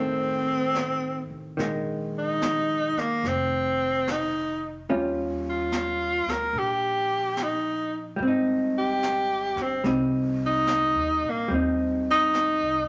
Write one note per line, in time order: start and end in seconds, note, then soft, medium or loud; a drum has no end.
0.00 1.25 A1 medium
0.00 1.56 D#3 soft
0.00 1.58 A3 soft
0.00 1.30 C4 medium
0.00 1.58 C4 soft
0.75 snare soft
0.75 hi-hat pedal soft
1.30 1.56 A1 medium
1.57 2.92 A#1 medium
1.57 4.89 D#3 soft
1.57 4.89 G#3 soft
1.57 brush sweep soft
1.57 snare soft
2.18 3.01 D#4 medium
2.41 snare soft
2.41 hi-hat pedal soft
2.96 3.30 A#3 medium
2.96 muted upright bass stroke soft
2.96 snare soft
3.23 4.85 F1 medium
3.23 brush sweep soft
3.23 snare soft
3.28 4.12 C4 medium
4.07 4.77 D#4 medium
4.07 snare soft
4.07 hi-hat pedal soft
4.89 6.22 D#2 medium
4.89 8.15 G3 soft
4.89 8.19 C#4 medium
4.89 8.20 F4 medium
4.89 brush sweep soft
5.50 6.33 F4 medium
5.72 snare soft
5.72 hi-hat pedal soft
6.26 6.52 D2 medium
6.26 snare soft
6.31 6.60 A#4 medium
6.53 8.14 A#1 medium
6.53 brush sweep soft
6.59 7.45 G4 medium
7.37 snare soft
7.37 hi-hat pedal soft
7.43 8.08 D#4 medium
8.16 9.52 G#1 medium
8.16 9.83 G3 soft
8.20 9.84 C4 soft
8.20 brush sweep soft
8.27 9.85 D#4 medium
8.79 9.64 G4 medium
9.03 snare soft
9.03 hi-hat pedal medium
9.56 9.82 G1 medium
9.56 snare soft
9.62 9.87 C4 medium
9.84 10.91 C2 medium
9.84 11.47 G3 soft
9.84 11.50 C4 soft
9.84 11.51 D#4 soft
9.84 brush sweep soft
9.84 snare soft
10.46 11.32 D#4 medium
10.67 snare soft
10.67 hi-hat pedal soft
10.95 11.21 D#2 medium
11.23 11.49 A#1 medium
11.30 11.54 A#3 medium
11.48 12.57 D#2 medium
11.48 12.88 G3 soft
11.48 12.88 C4 soft
11.48 brush sweep soft
11.54 12.88 D#4 soft
12.11 12.88 D#4 medium
12.33 snare soft
12.33 hi-hat pedal soft
12.61 12.86 C2 soft